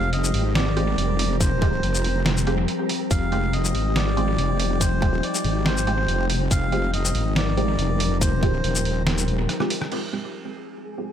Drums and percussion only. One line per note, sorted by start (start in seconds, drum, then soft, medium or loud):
0.13 closed hi-hat medium
0.24 shaker medium
0.34 open hi-hat medium
0.55 snare loud
0.55 closed hi-hat medium
0.77 closed hi-hat medium
0.98 closed hi-hat medium
1.19 open hi-hat medium
1.41 kick loud
1.41 closed hi-hat medium
1.41 shaker medium
1.62 kick loud
1.62 closed hi-hat medium
1.83 closed hi-hat medium
1.94 shaker medium
2.04 open hi-hat medium
2.26 snare loud
2.26 closed hi-hat medium
2.37 shaker medium
2.47 closed hi-hat medium
2.68 closed hi-hat medium
2.89 open hi-hat medium
3.11 kick loud
3.11 closed hi-hat medium
3.11 shaker medium
3.32 closed hi-hat medium
3.53 closed hi-hat medium
3.65 shaker medium
3.75 open hi-hat medium
3.96 snare loud
3.96 closed hi-hat medium
4.17 closed hi-hat soft
4.38 closed hi-hat medium
4.60 open hi-hat medium
4.81 kick loud
4.81 closed hi-hat medium
4.81 shaker medium
5.02 kick loud
5.02 closed hi-hat medium
5.23 closed hi-hat medium
5.34 shaker medium
5.44 open hi-hat medium
5.66 snare loud
5.66 closed hi-hat medium
5.77 shaker medium
5.87 closed hi-hat medium
6.08 closed hi-hat medium
6.30 open hi-hat medium
6.51 kick loud
6.51 closed hi-hat medium
6.51 shaker medium
6.72 closed hi-hat medium
6.94 closed hi-hat medium
7.05 shaker medium
7.15 open hi-hat medium
7.36 snare loud
7.36 closed hi-hat medium
7.57 closed hi-hat medium
7.79 closed hi-hat medium
8.00 open hi-hat medium
8.21 kick loud
8.21 closed hi-hat medium
8.21 shaker medium
8.43 kick loud
8.43 closed hi-hat medium
8.64 closed hi-hat medium
8.75 shaker medium
8.85 open hi-hat medium
9.07 snare loud
9.07 closed hi-hat medium
9.18 shaker medium
9.28 closed hi-hat medium
9.49 cross-stick medium
9.49 closed hi-hat medium
9.60 cross-stick medium
9.70 open hi-hat medium
9.82 cross-stick medium
9.92 crash medium